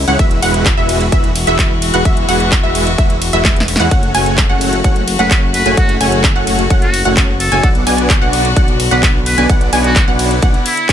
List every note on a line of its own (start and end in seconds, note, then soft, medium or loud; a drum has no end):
0.00 0.16 C#3 medium
0.00 0.15 G#3 medium
0.00 0.16 E4 medium
0.08 0.17 C#2 medium
0.08 0.17 G#3 loud
0.08 0.17 C#4 medium
0.08 0.17 E4 medium
0.08 0.17 C#5 medium
0.08 0.17 F#5 loud
0.08 0.18 F#5 loud
0.08 closed hi-hat medium
0.19 0.40 E1 loud
0.19 3.88 E3 medium
0.19 0.40 G#3 medium
0.19 3.88 G#3 medium
0.19 0.40 E4 medium
0.19 3.88 F#4 medium
0.19 0.40 F#4 medium
0.19 0.40 B4 medium
0.19 0.40 E5 loud
0.19 kick loud
0.19 closed hi-hat medium
0.31 closed hi-hat soft
0.42 0.75 E1 medium
0.42 0.69 G#3 medium
0.42 0.69 E4 medium
0.42 0.69 F#4 medium
0.42 0.69 B4 medium
0.42 0.69 F#5 loud
0.42 open hi-hat loud
0.42 ride medium
0.54 closed hi-hat medium
0.66 kick loud
0.66 clap loud
0.66 closed hi-hat medium
0.77 1.10 E1 loud
0.77 1.04 G#3 medium
0.77 1.04 E4 medium
0.77 1.04 F#4 medium
0.77 1.04 B4 medium
0.77 1.04 E5 medium
0.77 1.04 E5 loud
0.89 open hi-hat medium
0.89 ride medium
1.01 closed hi-hat medium
1.12 1.45 E1 loud
1.12 1.29 G#3 medium
1.12 1.29 E4 medium
1.12 1.29 F#4 medium
1.12 1.29 B4 medium
1.12 1.29 E5 loud
1.12 kick loud
1.12 closed hi-hat medium
1.24 closed hi-hat soft
1.36 open hi-hat loud
1.36 ride medium
1.47 1.91 E1 loud
1.47 1.74 G#3 loud
1.47 1.74 E4 medium
1.47 1.74 F#4 medium
1.47 1.74 B4 medium
1.47 1.74 E5 loud
1.47 closed hi-hat medium
1.59 kick loud
1.59 clap loud
1.59 closed hi-hat medium
1.82 open hi-hat medium
1.82 ride medium
1.94 2.03 E1 loud
1.94 2.04 G#3 medium
1.94 2.04 E4 medium
1.94 2.04 F#4 medium
1.94 2.04 B4 medium
1.94 2.04 F#5 loud
1.94 closed hi-hat medium
2.05 2.26 E1 loud
2.05 2.26 G#3 medium
2.05 2.26 E4 medium
2.05 2.26 F#4 medium
2.05 2.26 B4 medium
2.05 2.26 E5 loud
2.05 kick loud
2.05 closed hi-hat medium
2.17 closed hi-hat soft
2.29 2.61 E1 loud
2.29 2.55 G#3 medium
2.29 2.55 E4 medium
2.29 2.55 F#4 medium
2.29 2.55 B4 medium
2.29 2.55 F#5 loud
2.29 open hi-hat loud
2.29 ride medium
2.40 closed hi-hat medium
2.52 kick loud
2.52 clap loud
2.52 closed hi-hat medium
2.63 2.96 E1 loud
2.63 2.90 G#3 medium
2.63 2.90 E4 medium
2.63 2.90 F#4 medium
2.63 2.90 B4 medium
2.63 2.90 E5 medium
2.75 open hi-hat medium
2.75 ride medium
2.87 closed hi-hat medium
2.98 3.31 E1 loud
2.98 3.15 G#3 medium
2.98 3.15 E4 medium
2.98 3.15 F#4 medium
2.98 3.15 B4 medium
2.98 3.15 E5 loud
2.98 kick loud
2.98 closed hi-hat medium
3.10 closed hi-hat soft
3.22 open hi-hat loud
3.22 ride medium
3.33 3.77 E1 loud
3.33 3.60 G#3 loud
3.33 3.60 E4 medium
3.33 3.60 F#4 medium
3.33 3.60 B4 medium
3.33 3.60 E5 loud
3.33 closed hi-hat medium
3.45 kick loud
3.45 snare medium
3.45 clap loud
3.45 closed hi-hat medium
3.56 snare medium
3.56 closed hi-hat soft
3.68 open hi-hat medium
3.68 ride medium
3.76 3.89 E2 loud
3.76 3.90 G#3 loud
3.76 3.90 E4 medium
3.76 3.90 F#4 medium
3.76 3.90 B4 medium
3.76 3.90 F#5 loud
3.76 snare loud
3.76 closed hi-hat medium
3.91 4.12 F#1 loud
3.91 7.60 C#3 medium
3.91 7.60 A3 medium
3.91 4.12 A3 medium
3.91 4.12 C#4 medium
3.91 7.60 F#4 medium
3.91 4.12 F#4 medium
3.91 4.12 C#5 medium
3.91 4.12 F#5 loud
3.91 kick loud
3.91 closed hi-hat medium
4.03 closed hi-hat soft
4.15 4.47 F#1 loud
4.15 4.41 A3 medium
4.15 4.41 C#4 medium
4.15 4.41 F#4 medium
4.15 4.41 C#5 medium
4.15 4.41 G#5 loud
4.15 open hi-hat loud
4.15 ride medium
4.26 closed hi-hat medium
4.38 kick loud
4.38 clap loud
4.38 closed hi-hat medium
4.49 4.82 F#1 loud
4.49 4.76 A3 medium
4.49 4.76 C#4 medium
4.49 4.76 F#4 medium
4.49 4.76 C#5 medium
4.49 4.76 F#5 medium
4.61 open hi-hat medium
4.61 ride medium
4.73 closed hi-hat medium
4.84 5.17 F#1 loud
4.84 5.01 A3 medium
4.84 5.01 C#4 medium
4.84 5.01 F#4 medium
4.84 5.01 C#5 medium
4.84 5.01 F#5 loud
4.84 kick loud
4.84 closed hi-hat medium
4.96 closed hi-hat soft
5.08 open hi-hat loud
5.08 ride medium
5.19 5.63 F#1 loud
5.19 5.46 A3 loud
5.19 5.46 C#4 medium
5.19 5.46 F#4 medium
5.19 5.27 B4 medium
5.19 5.46 C#5 medium
5.19 5.46 F#5 loud
5.19 closed hi-hat medium
5.31 5.38 B4 medium
5.31 kick loud
5.31 clap loud
5.31 closed hi-hat medium
5.54 5.74 B4 medium
5.54 open hi-hat medium
5.54 ride medium
5.66 5.75 F#1 medium
5.66 5.76 A3 loud
5.66 5.76 C#4 medium
5.66 5.76 F#4 medium
5.66 5.76 C#5 medium
5.66 5.76 G#5 loud
5.66 closed hi-hat medium
5.77 5.98 F#1 loud
5.77 5.98 A3 medium
5.77 5.98 C#4 medium
5.77 5.98 F#4 medium
5.77 5.97 F#4 medium
5.77 5.98 C#5 medium
5.77 5.98 F#5 loud
5.77 kick loud
5.77 closed hi-hat medium
5.89 closed hi-hat soft
6.01 6.33 F#1 loud
6.01 6.27 A3 medium
6.01 6.27 C#4 medium
6.01 6.27 F#4 medium
6.01 6.27 C#5 medium
6.01 6.27 G#5 loud
6.01 open hi-hat loud
6.01 ride medium
6.12 closed hi-hat medium
6.24 kick loud
6.24 clap loud
6.24 closed hi-hat medium
6.36 6.68 F#1 loud
6.36 6.62 A3 medium
6.36 6.62 C#4 medium
6.36 6.62 F#4 medium
6.36 6.62 C#5 medium
6.36 6.62 F#5 medium
6.47 open hi-hat loud
6.47 ride medium
6.59 closed hi-hat medium
6.70 7.03 F#1 medium
6.70 6.87 A3 loud
6.70 6.87 C#4 medium
6.70 6.87 F#4 medium
6.70 6.87 C#5 medium
6.70 6.87 F#5 loud
6.70 kick loud
6.70 closed hi-hat medium
6.82 7.02 F#4 medium
6.82 closed hi-hat soft
6.94 open hi-hat loud
6.94 ride medium
7.05 7.49 F#1 loud
7.05 7.32 A3 loud
7.05 7.32 C#4 medium
7.05 7.32 F#4 medium
7.05 7.32 C#5 medium
7.05 7.32 F#5 loud
7.05 closed hi-hat medium
7.17 kick loud
7.17 clap loud
7.17 closed hi-hat medium
7.40 7.68 A4 medium
7.40 open hi-hat loud
7.40 ride medium
7.52 7.61 F#1 loud
7.52 7.62 A3 loud
7.52 7.62 C#4 medium
7.52 7.62 F#4 medium
7.52 7.62 C#5 medium
7.52 7.62 G#5 loud
7.52 closed hi-hat medium
7.63 7.84 B1 loud
7.63 10.93 D3 medium
7.63 7.84 B3 medium
7.63 10.93 B3 medium
7.63 7.84 D4 medium
7.63 7.84 F#4 medium
7.63 9.48 F#4 medium
7.63 7.84 D5 medium
7.63 7.84 F#5 loud
7.63 kick loud
7.63 closed hi-hat medium
7.75 closed hi-hat soft
7.87 8.19 B1 loud
7.87 8.13 B3 medium
7.87 8.13 D4 medium
7.87 8.13 F#4 medium
7.87 8.13 D5 medium
7.87 8.13 G#5 loud
7.87 open hi-hat loud
7.87 ride medium
7.98 closed hi-hat medium
8.10 kick loud
8.10 clap loud
8.10 closed hi-hat medium
8.22 8.54 B1 loud
8.22 8.48 B3 medium
8.22 8.48 D4 medium
8.22 8.48 F#4 medium
8.22 8.48 D5 medium
8.22 8.48 F#5 medium
8.33 open hi-hat loud
8.33 ride medium
8.45 closed hi-hat medium
8.56 8.89 B1 loud
8.56 8.73 B3 medium
8.56 8.73 D4 medium
8.56 8.73 F#4 medium
8.56 8.73 D5 medium
8.56 8.73 F#5 loud
8.56 kick loud
8.56 closed hi-hat medium
8.68 closed hi-hat soft
8.80 open hi-hat loud
8.80 ride medium
8.91 9.36 B1 loud
8.91 9.18 B3 loud
8.91 9.18 D4 medium
8.91 9.18 F#4 medium
8.91 8.99 B4 medium
8.91 9.18 D5 medium
8.91 9.18 F#5 loud
8.91 closed hi-hat medium
9.03 9.10 B4 medium
9.03 kick loud
9.03 clap loud
9.03 closed hi-hat medium
9.26 9.46 B4 loud
9.26 open hi-hat loud
9.26 ride medium
9.38 9.47 B1 medium
9.38 9.48 B3 loud
9.38 9.48 D4 medium
9.38 9.48 F#4 medium
9.38 9.48 D5 medium
9.38 9.48 G#5 loud
9.38 closed hi-hat medium
9.49 9.70 B1 loud
9.49 9.70 B3 medium
9.49 9.70 D4 medium
9.49 10.93 E4 medium
9.49 9.70 F#4 medium
9.49 9.70 D5 medium
9.49 9.70 F#5 loud
9.49 kick loud
9.49 closed hi-hat medium
9.61 closed hi-hat soft
9.73 10.05 B1 loud
9.73 9.99 B3 medium
9.73 9.99 D4 medium
9.73 9.99 F#4 medium
9.73 9.99 D5 medium
9.73 9.99 G#5 loud
9.73 10.00 G#5 loud
9.73 open hi-hat loud
9.73 ride medium
9.84 10.04 F#4 loud
9.84 closed hi-hat medium
9.96 kick loud
9.96 clap loud
9.96 closed hi-hat medium
10.08 10.40 B1 loud
10.08 10.34 B3 medium
10.08 10.34 D4 medium
10.08 10.34 F#4 medium
10.08 10.34 D5 medium
10.08 10.34 F#5 medium
10.19 open hi-hat loud
10.19 ride medium
10.31 closed hi-hat medium
10.42 10.57 B1 loud
10.42 10.59 B3 medium
10.42 10.59 D4 medium
10.42 10.59 F#4 medium
10.42 10.59 D5 medium
10.42 10.59 F#5 loud
10.42 kick loud
10.42 closed hi-hat medium
10.54 closed hi-hat soft
10.66 10.93 E4 loud
10.66 open hi-hat loud
10.66 ride medium
10.77 closed hi-hat medium
10.89 10.93 B1 loud
10.89 10.93 B3 loud
10.89 10.93 D4 medium
10.89 10.93 F#4 medium
10.89 10.93 D5 medium
10.89 10.93 G#5 loud
10.89 kick loud
10.89 clap loud
10.89 closed hi-hat medium